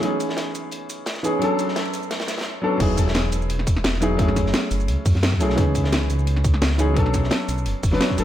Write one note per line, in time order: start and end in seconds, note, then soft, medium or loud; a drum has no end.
0.00 1.21 E3 loud
0.00 1.22 B3 medium
0.00 1.22 C#4 medium
0.00 1.23 D#4 medium
0.00 closed hi-hat medium
0.05 1.23 G#4 loud
0.20 closed hi-hat medium
0.20 shaker medium
0.29 snare medium
0.37 snare loud
0.37 closed hi-hat medium
0.54 1.06 C#2 medium
0.54 closed hi-hat medium
0.54 shaker medium
0.71 closed hi-hat medium
0.90 closed hi-hat medium
0.90 shaker medium
1.06 1.43 C#2 medium
1.06 snare loud
1.06 closed hi-hat medium
1.16 snare soft
1.16 closed hi-hat soft
1.23 1.39 E3 medium
1.23 1.39 B3 medium
1.23 1.40 C#4 medium
1.23 1.40 D#4 medium
1.23 1.40 G#4 loud
1.23 closed hi-hat medium
1.23 shaker medium
1.39 2.60 F#3 medium
1.39 2.60 B3 medium
1.39 2.61 C#4 medium
1.39 2.62 D4 medium
1.39 closed hi-hat medium
1.44 2.62 A4 loud
1.59 closed hi-hat medium
1.59 shaker medium
1.68 snare soft
1.76 snare loud
1.76 closed hi-hat medium
1.86 closed hi-hat soft
1.93 2.12 B1 medium
1.93 closed hi-hat medium
1.93 open hi-hat medium
1.93 shaker medium
2.03 shaker soft
2.11 snare loud
2.11 closed hi-hat medium
2.20 snare loud
2.20 closed hi-hat medium
2.28 snare medium
2.28 closed hi-hat medium
2.28 shaker medium
2.37 snare medium
2.37 closed hi-hat medium
2.41 snare medium
2.41 closed hi-hat medium
2.62 2.76 F#3 loud
2.62 2.77 B3 medium
2.62 2.78 C#4 medium
2.62 2.79 D4 medium
2.62 2.79 A4 loud
2.78 3.31 E1 loud
2.78 3.99 F#3 medium
2.78 3.99 B3 medium
2.78 4.00 D#4 medium
2.78 4.00 E4 medium
2.78 kick loud
2.78 closed hi-hat medium
2.78 crash loud
2.82 4.01 G#4 loud
2.97 kick medium
2.97 closed hi-hat medium
2.97 shaker medium
3.08 snare medium
3.14 snare loud
3.14 closed hi-hat medium
3.14 closed hi-hat loud
3.32 3.83 E1 medium
3.32 closed hi-hat medium
3.32 shaker medium
3.42 shaker soft
3.50 closed hi-hat medium
3.59 snare medium
3.67 kick loud
3.67 closed hi-hat medium
3.67 shaker medium
3.76 snare medium
3.84 4.18 E1 loud
3.84 snare loud
3.84 closed hi-hat medium
3.93 snare soft
4.01 4.15 F#3 medium
4.01 4.17 B3 medium
4.01 4.17 D#4 medium
4.01 4.17 E4 medium
4.01 4.18 G#4 loud
4.01 snare soft
4.01 closed hi-hat medium
4.01 shaker medium
4.17 4.52 F#1 loud
4.17 5.37 F#3 loud
4.17 5.38 A3 medium
4.17 5.39 C#4 medium
4.17 5.39 E4 medium
4.17 kick loud
4.17 closed hi-hat medium
4.22 5.40 G#4 loud
4.28 snare soft
4.36 kick medium
4.36 snare medium
4.36 closed hi-hat medium
4.36 shaker medium
4.46 snare soft
4.54 snare loud
4.54 closed hi-hat medium
4.71 4.90 F#1 medium
4.71 closed hi-hat medium
4.71 open hi-hat medium
4.71 shaker medium
4.80 shaker soft
4.88 4.97 C#2 medium
4.88 closed hi-hat medium
5.06 5.14 F#2 medium
5.06 kick loud
5.06 closed hi-hat medium
5.06 open hi-hat medium
5.06 shaker medium
5.15 5.42 F#2 loud
5.15 snare soft
5.23 snare loud
5.23 closed hi-hat loud
5.32 kick medium
5.32 snare soft
5.39 5.56 B1 medium
5.39 5.55 F#3 medium
5.39 5.56 A3 medium
5.39 5.56 C#4 medium
5.39 5.56 E4 medium
5.39 5.56 G#4 loud
5.39 snare soft
5.39 closed hi-hat medium
5.39 shaker medium
5.49 snare medium
5.55 6.08 C#2 loud
5.55 6.76 E3 medium
5.55 6.77 B3 medium
5.55 6.77 C#4 medium
5.55 6.78 D#4 medium
5.55 kick loud
5.55 closed hi-hat medium
5.60 6.78 G#4 loud
5.75 kick medium
5.75 closed hi-hat medium
5.75 shaker medium
5.84 snare medium
5.92 snare loud
5.92 closed hi-hat medium
6.10 6.61 C#2 medium
6.10 closed hi-hat medium
6.10 shaker medium
6.19 shaker soft
6.27 closed hi-hat medium
6.36 snare medium
6.44 kick loud
6.44 closed hi-hat medium
6.44 shaker medium
6.54 snare medium
6.62 6.98 C#2 medium
6.62 snare loud
6.62 closed hi-hat medium
6.71 snare soft
6.78 6.94 E3 medium
6.78 6.94 B3 medium
6.78 6.95 C#4 medium
6.78 6.95 D#4 medium
6.78 6.95 G#4 loud
6.78 snare soft
6.78 closed hi-hat medium
6.78 shaker medium
6.94 7.30 B1 loud
6.94 7.89 F#3 loud
6.94 7.90 B3 medium
6.94 7.91 C#4 medium
6.94 7.91 D4 medium
6.94 kick loud
6.94 closed hi-hat medium
6.99 7.92 A4 loud
7.06 snare soft
7.14 kick medium
7.14 snare soft
7.14 closed hi-hat medium
7.14 shaker medium
7.24 snare soft
7.31 snare loud
7.31 closed hi-hat medium
7.48 7.67 B1 medium
7.48 closed hi-hat medium
7.48 open hi-hat medium
7.48 shaker medium
7.58 shaker soft
7.66 7.74 F#1 loud
7.66 closed hi-hat medium
7.83 7.92 F#1 medium
7.83 kick loud
7.83 closed hi-hat medium
7.83 open hi-hat medium
7.83 shaker medium
7.91 8.00 F#1 loud
7.91 8.15 F#3 medium
7.91 8.16 B3 medium
7.91 8.16 C#4 medium
7.91 8.16 D4 medium
7.91 8.17 B4 loud
7.91 snare soft
8.01 snare loud
8.01 closed hi-hat medium
8.10 kick medium
8.10 snare soft
8.17 8.24 F#1 medium
8.17 8.24 F#3 medium
8.17 8.24 B3 medium
8.17 8.24 C#4 medium
8.17 8.24 D4 medium
8.17 8.24 A4 medium
8.17 snare soft
8.17 closed hi-hat medium
8.17 shaker medium